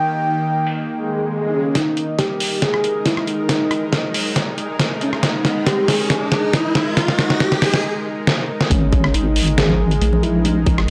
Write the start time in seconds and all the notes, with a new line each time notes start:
Already playing: D#3 A#3 D#4 G5
0.67 open hi-hat
0.88 swell
1.48 D#4
1.54 C#4
1.75 G#3 D#4 A#4, kick, snare, closed hi-hat, riser
1.97 closed hi-hat
2.19 G4, kick, snare, closed hi-hat
2.40 open hi-hat
2.62 G#4, kick, snare, closed hi-hat
2.74 cross-stick
2.84 closed hi-hat
3.06 E4, kick, snare, closed hi-hat
3.17 cross-stick
3.27 D#4, closed hi-hat
3.49 kick, snare, closed hi-hat
3.71 cross-stick, closed hi-hat
3.93 kick, snare, closed hi-hat
4.14 open hi-hat
4.36 kick, snare, closed hi-hat
4.58 closed hi-hat
4.80 kick, snare, closed hi-hat
5.01 C#4, closed hi-hat
5.13 cross-stick
5.23 D#4, kick, snare, closed hi-hat
5.45 snare, closed hi-hat
5.67 G4, kick, snare, closed hi-hat
5.88 G#4, snare, open hi-hat
6.10 kick, snare, closed hi-hat
6.32 snare, closed hi-hat
6.53 E4, kick, snare, closed hi-hat
6.75 D#4, snare, closed hi-hat
6.97 kick, snare, closed hi-hat
7.08 snare
7.19 snare, closed hi-hat
7.30 snare
7.40 kick, snare, closed hi-hat
7.52 snare
7.62 snare, open hi-hat
7.74 snare
8.27 snare
8.61 snare
8.70 G#1 G#3 C#4 D#4 A#4, kick, closed hi-hat, high conga
8.92 kick, closed hi-hat
9.04 cross-stick
9.14 G#1 D#4, closed hi-hat
9.36 open hi-hat
9.48 closed hi-hat
9.58 G#4, snare, closed hi-hat
9.69 low conga
9.91 closed hi-hat
10.01 A#1, closed hi-hat, high conga
10.13 low conga
10.23 E4, closed hi-hat
10.45 D#4, closed hi-hat, high conga
10.61 A1
10.66 kick, closed hi-hat, low conga
10.78 cross-stick